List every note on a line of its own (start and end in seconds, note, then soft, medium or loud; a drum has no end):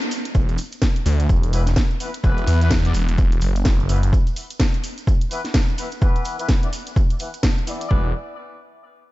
0.02 closed hi-hat soft
0.02 cabasa soft
0.11 open hi-hat loud
0.11 cabasa medium
0.25 closed hi-hat medium
0.25 cabasa soft
0.35 0.57 E1 medium
0.35 kick loud
0.35 cabasa medium
0.49 closed hi-hat soft
0.49 cabasa soft
0.58 open hi-hat loud
0.58 cabasa loud
0.72 closed hi-hat medium
0.72 cabasa soft
0.82 kick loud
0.82 snare loud
0.82 cabasa medium
0.96 closed hi-hat medium
0.96 cabasa soft
1.06 1.28 D2 loud
1.06 open hi-hat loud
1.06 cabasa loud
1.20 closed hi-hat medium
1.20 cabasa soft
1.29 1.75 E1 loud
1.29 kick loud
1.29 cabasa medium
1.43 closed hi-hat medium
1.43 cabasa soft
1.53 1.62 E3 medium
1.53 1.62 B3 medium
1.53 1.62 E4 medium
1.53 1.62 B4 medium
1.53 open hi-hat loud
1.53 cabasa loud
1.67 snare soft
1.67 closed hi-hat medium
1.67 cabasa soft
1.76 kick loud
1.76 snare loud
1.76 cabasa medium
1.91 cabasa soft
2.00 2.09 E3 medium
2.00 2.09 B3 medium
2.00 2.09 E4 medium
2.00 2.09 B4 medium
2.00 open hi-hat loud
2.00 cabasa medium
2.14 closed hi-hat medium
2.14 cabasa soft
2.24 2.46 E1 medium
2.24 2.58 E3 medium
2.24 2.58 B3 medium
2.24 2.58 E4 medium
2.24 2.58 B4 loud
2.24 kick loud
2.24 cabasa soft
2.38 closed hi-hat soft
2.38 cabasa soft
2.47 2.93 E2 medium
2.47 open hi-hat loud
2.47 cabasa loud
2.61 2.71 E3 medium
2.61 2.71 B3 medium
2.61 2.71 E4 medium
2.61 2.71 B4 loud
2.61 closed hi-hat medium
2.61 cabasa soft
2.71 kick loud
2.71 snare loud
2.71 cabasa medium
2.85 2.91 E3 medium
2.85 2.91 B3 medium
2.85 2.91 E4 medium
2.85 2.91 D5 medium
2.85 closed hi-hat medium
2.85 cabasa soft
2.94 3.17 E1 loud
2.94 open hi-hat loud
2.94 cabasa medium
3.08 closed hi-hat medium
3.08 cabasa soft
3.18 3.40 E1 loud
3.18 kick loud
3.18 cabasa medium
3.32 closed hi-hat medium
3.32 cabasa soft
3.41 3.64 F#1 loud
3.41 open hi-hat loud
3.41 cabasa loud
3.56 closed hi-hat medium
3.56 cabasa soft
3.65 3.88 F#1 loud
3.65 kick loud
3.65 snare loud
3.65 cabasa medium
3.80 cabasa soft
3.89 4.11 F#1 loud
3.89 3.98 E3 medium
3.89 3.98 B3 medium
3.89 3.98 E4 medium
3.89 3.98 B4 medium
3.89 open hi-hat loud
3.89 cabasa loud
4.03 closed hi-hat medium
4.03 cabasa soft
4.13 kick loud
4.13 cabasa medium
4.27 closed hi-hat soft
4.27 cabasa soft
4.36 open hi-hat loud
4.36 cabasa medium
4.51 closed hi-hat medium
4.51 cabasa soft
4.60 kick loud
4.60 snare loud
4.60 cabasa medium
4.74 closed hi-hat soft
4.74 cabasa soft
4.84 open hi-hat loud
4.84 cabasa loud
4.98 closed hi-hat medium
4.98 cabasa soft
5.07 kick loud
5.07 cabasa medium
5.21 closed hi-hat soft
5.21 cabasa soft
5.31 5.40 E3 medium
5.31 5.40 B3 medium
5.31 5.40 E4 medium
5.31 5.40 B4 loud
5.31 open hi-hat loud
5.31 cabasa medium
5.45 snare soft
5.45 closed hi-hat medium
5.45 cabasa soft
5.54 kick loud
5.54 snare loud
5.54 cabasa medium
5.68 cabasa soft
5.78 5.87 E3 medium
5.78 5.87 B3 medium
5.78 5.87 E4 medium
5.78 5.87 B4 medium
5.78 open hi-hat loud
5.78 cabasa medium
5.91 closed hi-hat medium
5.91 cabasa soft
6.02 6.36 E3 medium
6.02 6.36 B3 medium
6.02 6.36 E4 medium
6.02 6.36 B4 loud
6.02 kick loud
6.02 cabasa soft
6.16 closed hi-hat soft
6.16 cabasa soft
6.25 open hi-hat loud
6.25 cabasa medium
6.39 6.49 E3 medium
6.39 6.49 B3 medium
6.39 6.49 E4 medium
6.39 6.49 B4 loud
6.39 closed hi-hat medium
6.39 cabasa soft
6.49 kick loud
6.49 snare loud
6.49 cabasa medium
6.63 6.69 E3 medium
6.63 6.69 B3 medium
6.63 6.69 E4 medium
6.63 6.69 D5 medium
6.63 closed hi-hat soft
6.63 cabasa soft
6.73 open hi-hat loud
6.73 cabasa loud
6.87 closed hi-hat medium
6.87 cabasa soft
6.96 kick loud
6.96 cabasa medium
7.10 closed hi-hat soft
7.10 cabasa soft
7.19 7.29 E3 medium
7.19 7.29 B3 medium
7.19 7.29 E4 medium
7.19 7.29 B4 medium
7.19 open hi-hat loud
7.19 cabasa medium
7.34 closed hi-hat medium
7.34 cabasa soft
7.43 kick loud
7.43 snare loud
7.43 cabasa medium
7.58 cabasa soft
7.67 7.90 E3 medium
7.67 7.90 B3 medium
7.67 7.90 E4 medium
7.67 8.14 D5 loud
7.67 open hi-hat loud
7.67 cabasa loud
7.81 closed hi-hat medium
7.81 cabasa soft
7.91 8.13 E1 medium
7.91 8.09 E3 medium
7.91 8.09 B3 medium
7.91 8.09 E4 medium
7.91 8.09 B4 loud
7.91 kick loud